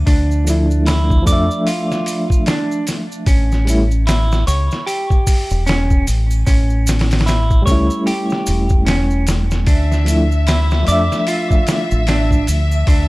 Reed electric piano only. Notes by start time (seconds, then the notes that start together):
Already playing: F3 A3 D4 E5
0.45 F3 A3 D4
0.50 E4
1.23 F3 A3
1.29 D4 E5
3.65 G3 A3 C#4
3.70 E4
7.62 G3 A3
7.68 C#4 E4
10.05 F3 A3 D4
10.10 E4
10.83 F3 A3
10.89 D4 E5